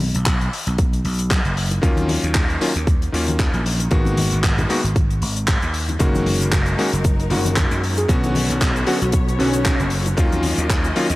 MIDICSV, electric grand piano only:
0, 0, Header, 1, 2, 480
1, 0, Start_track
1, 0, Tempo, 521739
1, 1684, Time_signature, 4, 2, 24, 8
1, 10263, End_track
2, 0, Start_track
2, 0, Title_t, "Electric grand piano"
2, 0, Program_c, 0, 2
2, 1671, Note_on_c, 0, 51, 92
2, 1677, Note_on_c, 0, 54, 84
2, 1681, Note_on_c, 0, 58, 82
2, 1686, Note_on_c, 0, 61, 84
2, 1690, Note_on_c, 0, 65, 104
2, 2372, Note_off_c, 0, 51, 0
2, 2375, Note_off_c, 0, 54, 0
2, 2377, Note_off_c, 0, 58, 0
2, 2379, Note_off_c, 0, 61, 0
2, 2381, Note_off_c, 0, 65, 0
2, 2398, Note_on_c, 0, 51, 86
2, 2404, Note_on_c, 0, 54, 81
2, 2404, Note_on_c, 0, 58, 79
2, 2408, Note_on_c, 0, 61, 82
2, 2409, Note_on_c, 0, 65, 98
2, 2492, Note_off_c, 0, 51, 0
2, 2495, Note_off_c, 0, 54, 0
2, 2495, Note_off_c, 0, 58, 0
2, 2497, Note_off_c, 0, 61, 0
2, 2498, Note_off_c, 0, 65, 0
2, 2874, Note_on_c, 0, 51, 71
2, 2878, Note_on_c, 0, 54, 63
2, 2884, Note_on_c, 0, 58, 66
2, 2888, Note_on_c, 0, 61, 66
2, 2891, Note_on_c, 0, 65, 78
2, 3573, Note_off_c, 0, 51, 0
2, 3575, Note_off_c, 0, 54, 0
2, 3578, Note_off_c, 0, 58, 0
2, 3581, Note_off_c, 0, 61, 0
2, 3582, Note_off_c, 0, 65, 0
2, 3594, Note_on_c, 0, 51, 89
2, 3600, Note_on_c, 0, 56, 81
2, 3604, Note_on_c, 0, 58, 84
2, 3608, Note_on_c, 0, 59, 84
2, 3614, Note_on_c, 0, 66, 103
2, 4294, Note_off_c, 0, 51, 0
2, 4296, Note_off_c, 0, 56, 0
2, 4298, Note_off_c, 0, 58, 0
2, 4300, Note_off_c, 0, 59, 0
2, 4303, Note_off_c, 0, 66, 0
2, 4315, Note_on_c, 0, 51, 86
2, 4318, Note_on_c, 0, 56, 81
2, 4320, Note_on_c, 0, 58, 82
2, 4324, Note_on_c, 0, 59, 80
2, 4324, Note_on_c, 0, 66, 96
2, 4410, Note_off_c, 0, 51, 0
2, 4412, Note_off_c, 0, 56, 0
2, 4413, Note_off_c, 0, 58, 0
2, 4415, Note_off_c, 0, 59, 0
2, 4415, Note_off_c, 0, 66, 0
2, 5512, Note_on_c, 0, 51, 91
2, 5517, Note_on_c, 0, 56, 83
2, 5520, Note_on_c, 0, 58, 81
2, 5524, Note_on_c, 0, 61, 82
2, 5529, Note_on_c, 0, 66, 100
2, 6212, Note_off_c, 0, 51, 0
2, 6215, Note_off_c, 0, 56, 0
2, 6216, Note_off_c, 0, 58, 0
2, 6219, Note_off_c, 0, 61, 0
2, 6221, Note_off_c, 0, 66, 0
2, 6238, Note_on_c, 0, 51, 88
2, 6240, Note_on_c, 0, 56, 83
2, 6245, Note_on_c, 0, 58, 79
2, 6247, Note_on_c, 0, 61, 81
2, 6248, Note_on_c, 0, 66, 97
2, 6332, Note_off_c, 0, 51, 0
2, 6333, Note_off_c, 0, 56, 0
2, 6335, Note_off_c, 0, 58, 0
2, 6336, Note_off_c, 0, 61, 0
2, 6337, Note_off_c, 0, 66, 0
2, 6714, Note_on_c, 0, 51, 73
2, 6718, Note_on_c, 0, 56, 64
2, 6724, Note_on_c, 0, 58, 66
2, 6727, Note_on_c, 0, 61, 65
2, 6734, Note_on_c, 0, 66, 78
2, 7413, Note_off_c, 0, 51, 0
2, 7415, Note_off_c, 0, 56, 0
2, 7418, Note_off_c, 0, 58, 0
2, 7420, Note_off_c, 0, 61, 0
2, 7423, Note_off_c, 0, 66, 0
2, 7436, Note_on_c, 0, 50, 90
2, 7441, Note_on_c, 0, 54, 83
2, 7445, Note_on_c, 0, 59, 83
2, 7451, Note_on_c, 0, 61, 82
2, 7457, Note_on_c, 0, 66, 99
2, 8135, Note_off_c, 0, 50, 0
2, 8137, Note_off_c, 0, 54, 0
2, 8139, Note_off_c, 0, 59, 0
2, 8142, Note_off_c, 0, 61, 0
2, 8145, Note_off_c, 0, 66, 0
2, 8156, Note_on_c, 0, 50, 88
2, 8161, Note_on_c, 0, 54, 83
2, 8162, Note_on_c, 0, 59, 83
2, 8165, Note_on_c, 0, 61, 83
2, 8167, Note_on_c, 0, 66, 101
2, 8251, Note_off_c, 0, 50, 0
2, 8253, Note_off_c, 0, 54, 0
2, 8254, Note_off_c, 0, 59, 0
2, 8255, Note_off_c, 0, 61, 0
2, 8256, Note_off_c, 0, 66, 0
2, 8634, Note_on_c, 0, 50, 73
2, 8639, Note_on_c, 0, 54, 65
2, 8643, Note_on_c, 0, 59, 65
2, 8648, Note_on_c, 0, 61, 67
2, 8653, Note_on_c, 0, 66, 81
2, 9333, Note_off_c, 0, 50, 0
2, 9336, Note_off_c, 0, 54, 0
2, 9338, Note_off_c, 0, 59, 0
2, 9340, Note_off_c, 0, 61, 0
2, 9343, Note_off_c, 0, 66, 0
2, 9353, Note_on_c, 0, 51, 95
2, 9360, Note_on_c, 0, 54, 85
2, 9363, Note_on_c, 0, 58, 87
2, 9368, Note_on_c, 0, 61, 83
2, 9372, Note_on_c, 0, 65, 103
2, 10053, Note_off_c, 0, 51, 0
2, 10056, Note_off_c, 0, 54, 0
2, 10058, Note_off_c, 0, 58, 0
2, 10061, Note_off_c, 0, 61, 0
2, 10063, Note_off_c, 0, 65, 0
2, 10080, Note_on_c, 0, 51, 91
2, 10082, Note_on_c, 0, 54, 84
2, 10084, Note_on_c, 0, 58, 83
2, 10086, Note_on_c, 0, 61, 83
2, 10088, Note_on_c, 0, 65, 100
2, 10173, Note_off_c, 0, 51, 0
2, 10174, Note_off_c, 0, 54, 0
2, 10175, Note_off_c, 0, 58, 0
2, 10176, Note_off_c, 0, 61, 0
2, 10177, Note_off_c, 0, 65, 0
2, 10263, End_track
0, 0, End_of_file